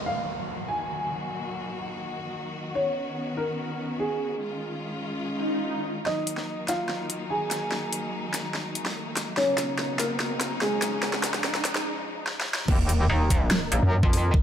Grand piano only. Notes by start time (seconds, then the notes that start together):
0.06 F5
0.68 G#5
2.75 C#5
3.37 A#4
3.99 G#4
6.06 D#4 D#5
6.68 F4 F5
7.30 G#4 G#5
9.37 C#4 C#5
9.99 A#3 A#4
10.61 G#3 G#4